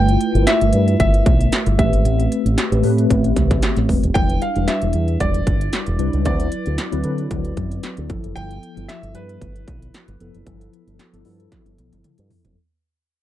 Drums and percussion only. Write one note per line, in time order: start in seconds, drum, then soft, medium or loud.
0.09 closed hi-hat medium
0.21 closed hi-hat medium
0.35 closed hi-hat soft
0.47 snare loud
0.47 closed hi-hat medium
0.61 closed hi-hat medium
0.73 closed hi-hat medium
0.88 closed hi-hat medium
1.00 kick medium
1.00 closed hi-hat medium
1.14 closed hi-hat soft
1.26 kick medium
1.26 closed hi-hat medium
1.41 closed hi-hat soft
1.52 snare loud
1.52 closed hi-hat medium
1.66 closed hi-hat medium
1.79 kick loud
1.79 closed hi-hat medium
1.93 closed hi-hat soft
2.05 closed hi-hat medium
2.20 closed hi-hat medium
2.32 closed hi-hat medium
2.46 closed hi-hat medium
2.58 snare loud
2.58 closed hi-hat medium
2.72 closed hi-hat soft
2.83 open hi-hat medium
2.98 closed hi-hat medium
3.10 kick medium
3.10 closed hi-hat medium
3.24 closed hi-hat soft
3.36 kick medium
3.36 snare soft
3.36 closed hi-hat medium
3.51 kick loud
3.51 snare soft
3.51 closed hi-hat soft
3.62 snare loud
3.62 closed hi-hat medium
3.77 snare soft
3.77 closed hi-hat medium
3.89 kick medium
3.89 open hi-hat medium
4.03 closed hi-hat soft
4.15 kick loud
4.15 closed hi-hat medium
4.29 closed hi-hat soft
4.42 closed hi-hat medium
4.56 closed hi-hat soft
4.68 snare loud
4.68 closed hi-hat medium
4.82 closed hi-hat medium
4.93 closed hi-hat medium
5.08 closed hi-hat soft
5.20 kick medium
5.20 closed hi-hat medium
5.34 closed hi-hat soft
5.47 kick medium
5.47 closed hi-hat medium
5.61 closed hi-hat medium
5.73 snare loud
5.73 closed hi-hat loud
5.86 closed hi-hat soft
5.99 closed hi-hat medium
6.13 closed hi-hat soft
6.25 kick loud
6.25 closed hi-hat medium
6.40 closed hi-hat medium
6.52 closed hi-hat medium
6.66 closed hi-hat medium
6.78 snare loud
6.78 closed hi-hat medium
6.92 closed hi-hat medium
7.04 closed hi-hat medium
7.18 closed hi-hat soft
7.31 kick medium
7.31 closed hi-hat medium
7.45 closed hi-hat soft
7.57 kick medium
7.57 closed hi-hat medium
7.71 closed hi-hat medium
7.83 snare loud
7.83 closed hi-hat medium
7.97 closed hi-hat soft
8.10 kick medium
8.10 closed hi-hat medium
8.24 closed hi-hat medium
8.36 closed hi-hat medium
8.51 closed hi-hat medium
8.63 closed hi-hat medium
8.77 closed hi-hat soft
8.89 snare loud
8.89 closed hi-hat medium
9.03 closed hi-hat medium
9.15 closed hi-hat medium
9.29 closed hi-hat medium
9.41 kick medium
9.41 closed hi-hat medium
9.56 closed hi-hat soft
9.68 kick medium
9.68 closed hi-hat medium
9.82 closed hi-hat medium
9.94 snare loud
9.94 closed hi-hat medium
10.08 closed hi-hat medium
10.20 closed hi-hat medium
10.35 closed hi-hat soft
10.47 kick loud
10.47 closed hi-hat medium
10.61 closed hi-hat medium
10.73 closed hi-hat medium
10.88 closed hi-hat soft
10.99 snare loud
10.99 closed hi-hat medium
11.14 closed hi-hat medium
11.25 open hi-hat medium
11.40 closed hi-hat medium
11.52 kick medium
11.52 snare medium
11.52 closed hi-hat medium
11.66 closed hi-hat soft
11.78 closed hi-hat medium
11.78 high tom medium
11.92 closed hi-hat medium
11.92 high tom medium
12.04 closed hi-hat medium
12.04 mid tom medium
12.18 closed hi-hat medium
12.30 floor tom medium
12.30 open hi-hat medium
12.45 closed hi-hat soft
12.45 floor tom medium